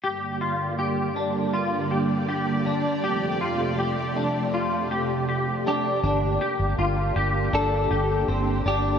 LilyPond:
<<
  \new Staff \with { instrumentName = "Clean electric guitar" } { \time 4/4 \key g \dorian \tempo 4 = 80 r1 | r2. r8 g'8~ | g'4. r8 a'4 r8 g'8 | }
  \new Staff \with { instrumentName = "Clean electric guitar" } { \time 4/4 \key g \dorian g'8 f'8 g'8 d'8 f'8 g'8 g'8 d'8 | g'8 f'8 g'8 d'8 f'8 g'8 g'8 d'8 | d'8 g'8 f'8 g'8 d'8 g'8 c'8 d'8 | }
  \new Staff \with { instrumentName = "String machine" } { \time 4/4 \key g \dorian << { <g' d''>1~ | <g' d''>1 | <d' g'>1 | } \\ { <g, d bes>1 | <f, c a>1 | bes1 | } >> }
  \new Staff \with { instrumentName = "Fingered electric bass" } { \clef bass \time 4/4 \key g \dorian r1 | r1 | g,,8 r16 g,,16 g,,8 g,,8 g,,8 g,,8 g,,8 g,,8 | }
>>